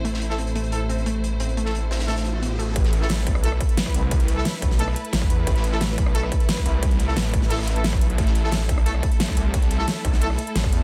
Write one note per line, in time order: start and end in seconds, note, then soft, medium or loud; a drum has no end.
0.00 2.74 A1 medium
0.00 2.72 A3 medium
0.00 2.72 E4 medium
0.00 2.73 C5 medium
0.05 0.21 A3 loud
0.05 closed hi-hat medium
0.05 riser medium
0.14 snare medium
0.21 closed hi-hat medium
0.30 0.37 A3 medium
0.30 0.37 E4 medium
0.30 0.37 A4 medium
0.30 snare soft
0.38 0.46 C4 medium
0.38 closed hi-hat medium
0.47 closed hi-hat soft
0.55 0.72 A3 loud
0.55 closed hi-hat medium
0.64 closed hi-hat soft
0.72 0.79 A3 medium
0.72 0.79 E4 medium
0.72 0.79 A4 loud
0.72 closed hi-hat medium
0.89 0.96 C4 medium
0.89 closed hi-hat medium
0.98 closed hi-hat soft
1.06 1.22 A3 loud
1.06 closed hi-hat medium
1.24 closed hi-hat medium
1.40 1.47 C4 medium
1.40 closed hi-hat medium
1.49 closed hi-hat soft
1.57 1.73 A3 loud
1.57 closed hi-hat medium
1.66 1.73 A3 medium
1.66 1.73 E4 medium
1.66 1.73 A4 medium
1.66 snare soft
1.75 closed hi-hat medium
1.91 1.98 C4 medium
1.91 snare loud
1.91 closed hi-hat medium
1.99 snare loud
1.99 closed hi-hat medium
2.08 2.15 A3 medium
2.08 2.24 A3 loud
2.08 2.15 E4 medium
2.08 2.15 A4 loud
2.08 snare loud
2.08 closed hi-hat medium
2.16 snare loud
2.16 closed hi-hat medium
2.25 closed hi-hat medium
2.42 2.54 B3 medium
2.42 closed hi-hat medium
2.59 2.71 A3 loud
2.59 closed hi-hat medium
2.76 3.25 A1 medium
2.76 10.83 A3 medium
2.76 10.83 E4 medium
2.76 8.16 B4 medium
2.76 kick loud
2.76 closed hi-hat loud
2.76 closed hi-hat medium
2.84 snare medium
2.84 closed hi-hat soft
2.93 closed hi-hat medium
3.01 3.08 A3 medium
3.01 3.08 E4 medium
3.01 3.08 A4 loud
3.01 snare soft
3.09 snare loud
3.09 closed hi-hat medium
3.19 closed hi-hat soft
3.27 3.59 B1 loud
3.27 kick loud
3.27 closed hi-hat medium
3.35 cross-stick medium
3.35 closed hi-hat soft
3.43 3.51 A3 medium
3.43 3.51 E4 medium
3.43 3.51 A4 loud
3.43 closed hi-hat medium
3.52 cross-stick soft
3.61 kick loud
3.61 closed hi-hat medium
3.69 closed hi-hat soft
3.77 snare loud
3.77 closed hi-hat loud
3.86 kick medium
3.86 cross-stick soft
3.94 4.44 C2 medium
3.94 closed hi-hat medium
4.11 kick loud
4.11 closed hi-hat medium
4.20 closed hi-hat soft
4.28 closed hi-hat medium
4.37 4.44 A3 medium
4.37 4.44 E4 medium
4.37 4.44 A4 loud
4.37 snare soft
4.45 snare loud
4.45 closed hi-hat medium
4.45 closed hi-hat loud
4.62 4.95 B1 loud
4.62 kick loud
4.62 closed hi-hat medium
4.71 snare soft
4.71 closed hi-hat soft
4.79 4.86 A3 loud
4.79 4.86 E4 medium
4.79 4.86 A4 loud
4.79 closed hi-hat medium
4.79 open hi-hat medium
4.88 cross-stick soft
4.96 closed hi-hat medium
5.05 closed hi-hat soft
5.13 5.29 A1 loud
5.13 snare loud
5.13 closed hi-hat medium
5.13 closed hi-hat loud
5.22 kick loud
5.22 cross-stick soft
5.30 5.46 E2 loud
5.30 closed hi-hat medium
5.47 5.97 A1 loud
5.47 kick loud
5.47 closed hi-hat medium
5.56 snare medium
5.56 closed hi-hat soft
5.64 closed hi-hat medium
5.72 5.79 A3 medium
5.72 5.79 E4 medium
5.72 5.79 A4 loud
5.72 snare soft
5.81 snare loud
5.81 closed hi-hat medium
5.89 closed hi-hat soft
5.98 6.30 B1 loud
5.98 kick loud
5.98 closed hi-hat medium
6.06 cross-stick medium
6.06 closed hi-hat soft
6.15 6.22 A3 loud
6.15 6.22 E4 medium
6.15 6.22 A4 loud
6.15 closed hi-hat medium
6.23 cross-stick soft
6.32 kick loud
6.32 closed hi-hat medium
6.40 closed hi-hat soft
6.49 snare loud
6.49 closed hi-hat medium
6.57 kick medium
6.57 cross-stick soft
6.66 7.15 C2 loud
6.66 closed hi-hat medium
6.83 kick loud
6.83 closed hi-hat medium
6.91 closed hi-hat soft
6.99 closed hi-hat medium
7.08 7.15 A3 medium
7.08 7.15 E4 medium
7.08 7.15 A4 medium
7.08 snare soft
7.16 8.00 A1 loud
7.16 snare loud
7.16 closed hi-hat medium
7.34 kick loud
7.34 closed hi-hat medium
7.42 snare soft
7.42 closed hi-hat soft
7.50 7.57 A3 medium
7.50 7.57 E4 medium
7.50 7.57 A4 loud
7.50 snare loud
7.50 closed hi-hat medium
7.55 snare medium
7.55 closed hi-hat medium
7.58 cross-stick soft
7.58 snare medium
7.58 closed hi-hat medium
7.63 snare medium
7.63 closed hi-hat medium
7.68 closed hi-hat medium
7.76 7.83 A3 medium
7.76 7.83 E4 medium
7.76 7.83 A4 medium
7.76 closed hi-hat soft
7.84 snare loud
7.84 closed hi-hat medium
7.84 closed hi-hat loud
7.93 kick loud
7.93 cross-stick soft
8.01 8.17 B1 loud
8.01 closed hi-hat medium
8.10 closed hi-hat soft
8.18 8.68 A1 loud
8.18 10.83 A4 medium
8.18 kick loud
8.18 closed hi-hat medium
8.26 snare medium
8.26 closed hi-hat soft
8.35 closed hi-hat medium
8.44 8.51 A3 medium
8.44 8.51 E4 medium
8.44 8.51 A4 medium
8.44 snare medium
8.51 snare loud
8.51 closed hi-hat medium
8.60 closed hi-hat soft
8.69 9.02 B1 loud
8.69 kick loud
8.69 closed hi-hat medium
8.78 cross-stick medium
8.78 closed hi-hat soft
8.86 8.93 A3 loud
8.86 8.93 E4 medium
8.86 8.93 A4 loud
8.86 closed hi-hat loud
8.86 closed hi-hat medium
8.95 cross-stick soft
9.03 kick loud
9.03 closed hi-hat medium
9.12 closed hi-hat soft
9.20 snare loud
9.20 closed hi-hat medium
9.28 kick medium
9.28 cross-stick soft
9.37 9.86 C2 loud
9.37 closed hi-hat medium
9.54 kick loud
9.54 closed hi-hat medium
9.62 closed hi-hat soft
9.70 closed hi-hat medium
9.79 9.86 A3 medium
9.79 9.86 E4 medium
9.79 9.86 A4 loud
9.79 snare soft
9.87 snare loud
9.87 closed hi-hat medium
10.05 10.37 B1 loud
10.05 kick loud
10.05 closed hi-hat medium
10.13 snare soft
10.13 closed hi-hat soft
10.22 10.29 A3 loud
10.22 10.29 E4 medium
10.22 10.29 A4 loud
10.22 closed hi-hat medium
10.22 open hi-hat medium
10.30 cross-stick soft
10.38 closed hi-hat medium
10.47 closed hi-hat soft
10.56 10.71 A1 medium
10.56 snare loud
10.56 closed hi-hat medium
10.64 kick loud
10.64 cross-stick soft
10.72 10.83 E2 loud
10.72 closed hi-hat medium